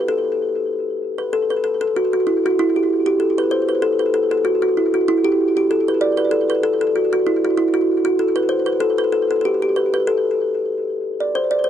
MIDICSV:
0, 0, Header, 1, 2, 480
1, 0, Start_track
1, 0, Tempo, 313152
1, 83, Time_signature, 4, 2, 24, 8
1, 17928, End_track
2, 0, Start_track
2, 0, Title_t, "Kalimba"
2, 0, Program_c, 0, 108
2, 130, Note_on_c, 0, 69, 80
2, 1750, Note_off_c, 0, 69, 0
2, 1814, Note_on_c, 0, 71, 63
2, 2003, Note_off_c, 0, 71, 0
2, 2039, Note_on_c, 0, 69, 84
2, 2293, Note_off_c, 0, 69, 0
2, 2304, Note_on_c, 0, 71, 70
2, 2508, Note_off_c, 0, 71, 0
2, 2511, Note_on_c, 0, 69, 74
2, 2756, Note_off_c, 0, 69, 0
2, 2775, Note_on_c, 0, 69, 80
2, 2983, Note_off_c, 0, 69, 0
2, 3011, Note_on_c, 0, 66, 76
2, 3235, Note_off_c, 0, 66, 0
2, 3268, Note_on_c, 0, 66, 70
2, 3450, Note_off_c, 0, 66, 0
2, 3476, Note_on_c, 0, 64, 70
2, 3731, Note_off_c, 0, 64, 0
2, 3767, Note_on_c, 0, 66, 83
2, 3959, Note_off_c, 0, 66, 0
2, 3974, Note_on_c, 0, 64, 91
2, 4220, Note_off_c, 0, 64, 0
2, 4234, Note_on_c, 0, 67, 70
2, 4674, Note_off_c, 0, 67, 0
2, 4692, Note_on_c, 0, 67, 83
2, 4881, Note_off_c, 0, 67, 0
2, 4902, Note_on_c, 0, 69, 74
2, 5139, Note_off_c, 0, 69, 0
2, 5183, Note_on_c, 0, 71, 82
2, 5382, Note_on_c, 0, 72, 82
2, 5387, Note_off_c, 0, 71, 0
2, 5644, Note_off_c, 0, 72, 0
2, 5650, Note_on_c, 0, 71, 71
2, 5859, Note_on_c, 0, 69, 92
2, 5860, Note_off_c, 0, 71, 0
2, 6121, Note_on_c, 0, 71, 69
2, 6122, Note_off_c, 0, 69, 0
2, 6314, Note_off_c, 0, 71, 0
2, 6344, Note_on_c, 0, 69, 83
2, 6593, Note_off_c, 0, 69, 0
2, 6611, Note_on_c, 0, 69, 81
2, 6817, Note_on_c, 0, 66, 74
2, 6820, Note_off_c, 0, 69, 0
2, 7066, Note_off_c, 0, 66, 0
2, 7084, Note_on_c, 0, 66, 80
2, 7297, Note_off_c, 0, 66, 0
2, 7315, Note_on_c, 0, 64, 68
2, 7570, Note_off_c, 0, 64, 0
2, 7571, Note_on_c, 0, 66, 75
2, 7780, Note_off_c, 0, 66, 0
2, 7791, Note_on_c, 0, 64, 98
2, 8039, Note_on_c, 0, 67, 89
2, 8047, Note_off_c, 0, 64, 0
2, 8516, Note_off_c, 0, 67, 0
2, 8534, Note_on_c, 0, 67, 88
2, 8721, Note_off_c, 0, 67, 0
2, 8748, Note_on_c, 0, 69, 80
2, 9006, Note_off_c, 0, 69, 0
2, 9018, Note_on_c, 0, 71, 73
2, 9212, Note_on_c, 0, 74, 89
2, 9222, Note_off_c, 0, 71, 0
2, 9463, Note_on_c, 0, 71, 88
2, 9477, Note_off_c, 0, 74, 0
2, 9676, Note_on_c, 0, 69, 84
2, 9685, Note_off_c, 0, 71, 0
2, 9949, Note_off_c, 0, 69, 0
2, 9958, Note_on_c, 0, 71, 86
2, 10169, Note_on_c, 0, 69, 95
2, 10173, Note_off_c, 0, 71, 0
2, 10423, Note_off_c, 0, 69, 0
2, 10441, Note_on_c, 0, 69, 85
2, 10633, Note_off_c, 0, 69, 0
2, 10662, Note_on_c, 0, 66, 68
2, 10897, Note_off_c, 0, 66, 0
2, 10925, Note_on_c, 0, 66, 84
2, 11135, Note_off_c, 0, 66, 0
2, 11137, Note_on_c, 0, 64, 77
2, 11399, Note_off_c, 0, 64, 0
2, 11413, Note_on_c, 0, 66, 78
2, 11599, Note_off_c, 0, 66, 0
2, 11610, Note_on_c, 0, 64, 85
2, 11860, Note_on_c, 0, 66, 85
2, 11876, Note_off_c, 0, 64, 0
2, 12318, Note_off_c, 0, 66, 0
2, 12336, Note_on_c, 0, 66, 84
2, 12557, Note_on_c, 0, 69, 76
2, 12561, Note_off_c, 0, 66, 0
2, 12809, Note_on_c, 0, 71, 81
2, 12830, Note_off_c, 0, 69, 0
2, 13012, Note_on_c, 0, 72, 78
2, 13038, Note_off_c, 0, 71, 0
2, 13270, Note_off_c, 0, 72, 0
2, 13277, Note_on_c, 0, 71, 78
2, 13494, Note_on_c, 0, 69, 104
2, 13512, Note_off_c, 0, 71, 0
2, 13769, Note_on_c, 0, 71, 80
2, 13778, Note_off_c, 0, 69, 0
2, 13986, Note_on_c, 0, 69, 80
2, 13998, Note_off_c, 0, 71, 0
2, 14237, Note_off_c, 0, 69, 0
2, 14265, Note_on_c, 0, 69, 74
2, 14408, Note_off_c, 0, 69, 0
2, 14426, Note_on_c, 0, 69, 61
2, 14479, Note_off_c, 0, 69, 0
2, 14488, Note_on_c, 0, 67, 77
2, 14731, Note_off_c, 0, 67, 0
2, 14750, Note_on_c, 0, 67, 79
2, 14963, Note_on_c, 0, 71, 77
2, 14968, Note_off_c, 0, 67, 0
2, 15213, Note_off_c, 0, 71, 0
2, 15231, Note_on_c, 0, 71, 82
2, 15428, Note_off_c, 0, 71, 0
2, 15441, Note_on_c, 0, 69, 92
2, 17083, Note_off_c, 0, 69, 0
2, 17174, Note_on_c, 0, 74, 62
2, 17380, Note_off_c, 0, 74, 0
2, 17401, Note_on_c, 0, 72, 89
2, 17640, Note_on_c, 0, 74, 71
2, 17651, Note_off_c, 0, 72, 0
2, 17844, Note_on_c, 0, 72, 77
2, 17854, Note_off_c, 0, 74, 0
2, 17928, Note_off_c, 0, 72, 0
2, 17928, End_track
0, 0, End_of_file